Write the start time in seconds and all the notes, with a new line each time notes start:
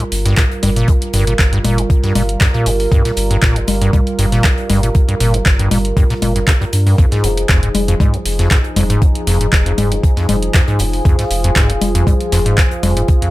Already playing: G3 F4 A#4
0.00 G2, closed hi-hat
0.12 G1, closed hi-hat, open hi-hat
0.25 G2, snare, closed hi-hat
0.37 A#2, kick, snare, clap, closed hi-hat
0.51 closed hi-hat
0.63 G1 G2, closed hi-hat, open hi-hat, low conga
0.76 A#2, closed hi-hat
0.88 G2, kick, closed hi-hat
1.02 closed hi-hat
1.13 G1 G2, snare, closed hi-hat, open hi-hat
1.27 A#2, closed hi-hat
1.38 G1, kick, snare, clap, closed hi-hat
1.53 G2, closed hi-hat
1.64 G1 A#2, closed hi-hat, open hi-hat, low conga
1.78 G2, closed hi-hat
1.90 kick, closed hi-hat
2.04 G2, snare, closed hi-hat
2.15 G1 A#2, closed hi-hat, open hi-hat, low conga
2.29 closed hi-hat
2.41 G2, kick, snare, clap, closed hi-hat
2.54 A#2, closed hi-hat
2.66 G1 G2, closed hi-hat, open hi-hat
2.80 open hi-hat
2.92 G2, kick, closed hi-hat
3.05 A#2, snare, closed hi-hat
3.17 G1, closed hi-hat, open hi-hat
3.31 G2, closed hi-hat
3.42 G1 A#2, kick, snare, clap, closed hi-hat
3.56 G2, closed hi-hat
3.68 G1, closed hi-hat, open hi-hat, low conga
3.82 G2, closed hi-hat
3.93 A#2, kick, closed hi-hat, low conga
4.07 closed hi-hat
4.19 G1 G2, closed hi-hat, open hi-hat
4.32 A#2, snare, closed hi-hat
4.44 G2, kick, snare, clap, closed hi-hat
4.58 closed hi-hat
4.70 G1 G2, closed hi-hat, open hi-hat, low conga
4.83 A#2, closed hi-hat
4.95 kick, closed hi-hat
5.09 G2, closed hi-hat
5.20 G1 A#2, snare, closed hi-hat, open hi-hat
5.34 G2, closed hi-hat
5.45 G1, kick, snare, clap, closed hi-hat
5.59 G2, closed hi-hat
5.71 G1 A#2, closed hi-hat, open hi-hat, low conga
5.85 closed hi-hat
5.97 G2, kick, closed hi-hat
6.10 A#2, snare, closed hi-hat
6.22 G1 A#2, closed hi-hat, open hi-hat, low conga
6.36 G2, closed hi-hat
6.48 A#2, kick, snare, clap, closed hi-hat
6.61 G2, closed hi-hat
6.73 G2, closed hi-hat, open hi-hat
6.87 G2, open hi-hat
6.98 F2 F3 D#4 G#4, kick, closed hi-hat
7.11 G#2, snare, closed hi-hat
7.24 F1 F2, closed hi-hat, open hi-hat
7.37 closed hi-hat
7.48 F1 F2, kick, snare, clap, closed hi-hat
7.63 G#2, closed hi-hat
7.75 F1, closed hi-hat, open hi-hat, low conga
7.88 F2, closed hi-hat
8.00 G#2, kick, closed hi-hat, low conga
8.14 F2, closed hi-hat
8.25 F1, closed hi-hat, open hi-hat
8.39 F2, snare, closed hi-hat
8.51 G#2, kick, snare, clap, closed hi-hat
8.64 closed hi-hat
8.76 F1 F2, closed hi-hat, open hi-hat, low conga
8.90 G#2, closed hi-hat
9.02 F2, kick, closed hi-hat
9.15 closed hi-hat
9.27 F1 F2, snare, closed hi-hat, open hi-hat
9.41 G#2, closed hi-hat
9.53 F1, kick, snare, clap, closed hi-hat
9.66 F2, closed hi-hat
9.78 F1 G#2, closed hi-hat, open hi-hat, low conga
9.92 F2, closed hi-hat
10.03 kick, closed hi-hat
10.17 F2, snare, closed hi-hat
10.29 F1 G#2, closed hi-hat, open hi-hat, low conga
10.43 closed hi-hat
10.54 F2, kick, snare, clap, closed hi-hat
10.68 G#2, closed hi-hat
10.79 F1 F2, closed hi-hat, open hi-hat
10.93 open hi-hat
11.05 F2 F4, kick, closed hi-hat
11.19 G#2, snare, closed hi-hat
11.31 F1, closed hi-hat, open hi-hat
11.44 F2, closed hi-hat
11.56 F1 G#2, kick, snare, clap, closed hi-hat
11.70 F2, closed hi-hat
11.81 F1, closed hi-hat, open hi-hat, low conga
11.95 F2, closed hi-hat
12.07 G#2, kick, closed hi-hat, low conga
12.21 closed hi-hat
12.32 F1 F2, snare, closed hi-hat, open hi-hat
12.46 G#2, closed hi-hat
12.58 F2, kick, snare, clap, closed hi-hat
12.71 closed hi-hat
12.83 F1 F2, closed hi-hat, open hi-hat, low conga
12.97 G#2, closed hi-hat
13.08 kick, closed hi-hat
13.22 F2, closed hi-hat